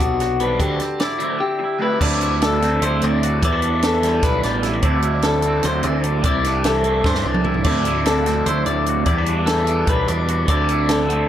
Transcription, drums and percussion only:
0.00 closed hi-hat medium
0.20 snare soft
0.20 closed hi-hat medium
0.40 closed hi-hat medium
0.60 kick loud
0.60 closed hi-hat medium
0.80 snare soft
0.80 closed hi-hat medium
1.00 snare loud
1.00 closed hi-hat medium
1.20 closed hi-hat medium
2.01 kick loud
2.01 crash loud
2.21 closed hi-hat medium
2.42 snare loud
2.42 closed hi-hat medium
2.62 snare soft
2.62 closed hi-hat medium
2.82 closed hi-hat loud
3.02 closed hi-hat medium
3.23 closed hi-hat medium
3.43 kick loud
3.43 closed hi-hat loud
3.62 closed hi-hat medium
3.82 snare loud
3.82 closed hi-hat medium
4.03 snare soft
4.03 closed hi-hat medium
4.23 kick loud
4.23 snare soft
4.23 closed hi-hat loud
4.43 snare soft
4.43 closed hi-hat medium
4.63 snare soft
4.63 closed hi-hat medium
4.82 kick loud
4.82 closed hi-hat medium
5.02 closed hi-hat medium
5.22 snare loud
5.22 closed hi-hat medium
5.42 closed hi-hat medium
5.63 snare soft
5.63 closed hi-hat loud
5.83 closed hi-hat medium
6.04 closed hi-hat medium
6.24 kick loud
6.24 closed hi-hat loud
6.44 snare soft
6.44 closed hi-hat medium
6.64 snare loud
6.64 closed hi-hat loud
6.84 closed hi-hat medium
7.04 kick loud
7.04 snare medium
7.15 snare medium
7.34 mid tom medium
7.44 mid tom loud
7.54 floor tom medium
7.64 kick loud
7.64 crash medium
7.85 closed hi-hat medium
8.06 snare loud
8.06 closed hi-hat medium
8.26 snare soft
8.26 closed hi-hat medium
8.46 closed hi-hat loud
8.66 closed hi-hat medium
8.86 closed hi-hat medium
9.06 kick loud
9.06 closed hi-hat medium
9.26 closed hi-hat medium
9.47 snare loud
9.47 closed hi-hat medium
9.67 closed hi-hat medium
9.87 kick loud
9.87 closed hi-hat loud
10.08 closed hi-hat medium
10.28 closed hi-hat medium
10.48 kick loud
10.48 closed hi-hat loud
10.69 closed hi-hat medium
10.89 snare loud
10.89 closed hi-hat loud
11.10 closed hi-hat medium

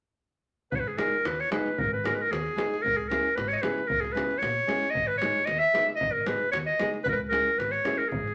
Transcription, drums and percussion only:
0.72 davul low medium
0.98 davul high medium
1.25 davul high medium
1.40 davul high soft
1.52 davul high medium
1.66 davul high soft
1.78 davul low medium
2.05 davul high medium
2.33 davul high medium
2.47 davul high soft
2.58 davul high medium
2.74 davul high soft
2.86 davul low medium
3.11 davul high medium
3.38 davul high medium
3.52 davul high soft
3.63 davul high medium
3.78 davul high soft
3.90 davul low medium
4.05 davul high soft
4.17 davul high medium
4.31 davul high soft
4.43 davul high medium
4.69 davul high medium
4.83 davul high soft
4.95 davul low medium
5.22 davul high medium
5.47 davul high medium
5.62 davul high soft
5.75 davul high medium
5.89 davul high soft
6.01 davul low medium
6.26 davul high medium
6.53 davul high medium
6.68 davul high soft
6.80 davul high medium
6.94 davul high soft
7.06 davul low medium
7.33 davul high medium
7.60 davul high soft
7.73 davul high soft
7.85 davul high medium
8.01 davul high soft
8.12 davul low medium
8.28 davul high soft

